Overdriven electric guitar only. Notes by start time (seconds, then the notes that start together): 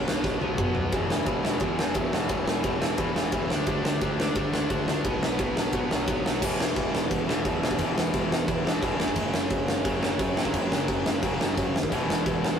Already playing: B2 F#3 B3
0.40 F#3 B3
0.44 B2
0.57 B2 F#3
0.61 B3
0.92 E2 B2 E3
1.09 E2 B2 E3
1.26 E2 B2 E3
1.45 E2 B2 E3
1.61 E2 B2 E3
1.79 E2 B2 E3
1.95 E2 B2 E3
2.12 E2 B2 E3
2.30 E2 B2 E3
2.46 E2 B2 E3
2.63 E2 B2 E3
2.80 E2 B2 E3
2.98 E2 B2 E3
3.15 E2 B2 E3
3.32 E2 B2 E3
3.50 D3 A3 D4
3.67 D3 A3 D4
3.84 D3 A3 D4
4.01 D3 A3 D4
4.18 D3 A3 D4
4.35 D3 A3 D4
4.52 D3 A3 D4
4.70 D3 A3 D4
4.88 D3 A3 D4
5.05 B2 F#3 B3
5.22 B2 F#3 B3
5.39 B2 F#3 B3
5.56 B2 F#3 B3
5.73 B2 F#3 B3
5.90 B2 F#3 B3
6.08 B2 F#3 B3
6.24 B2 F#3 B3
6.40 E2 B2
6.44 E3
7.26 B2 E3
7.31 E2
7.44 E2 B2 E3
7.78 E2 B2
7.82 E3
8.64 E2 B2 E3
8.81 E2 B2
8.85 E3
8.98 F#2 C#3
9.02 F#3
9.84 F#2 C#3 F#3
10.01 C#3 F#3
10.05 F#2
10.37 F#2 C#3 F#3
11.22 F#2 C#3 F#3
11.39 F#2 C#3 F#3
11.90 E2 B2 E3